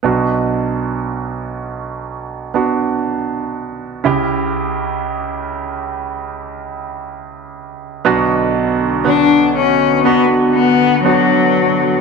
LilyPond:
<<
  \new Staff \with { instrumentName = "Grand piano" } { \time 4/4 \key b \minor \tempo 4 = 60 <b d' fis'>2~ <b d' fis'>8 <b d' fis'>4. | <cis' e' g'>1 | <b d' fis'>4 <d b fis'>4 <b d' fis'>4 <b d' fis'>4 | }
  \new Staff \with { instrumentName = "Grand piano" } { \clef bass \time 4/4 \key b \minor <b,, b,>1 | <cis, cis>1 | <b,, b,>1 | }
  \new Staff \with { instrumentName = "Analog synth pad" } { \time 4/4 \key b \minor r1 | r1 | <d b fis'>1 | }
  \new Staff \with { instrumentName = "Cello" } { \time 4/4 \key b \minor r1 | r1 | r4 d'8 cis'8 b8 b8 fis4 | }
>>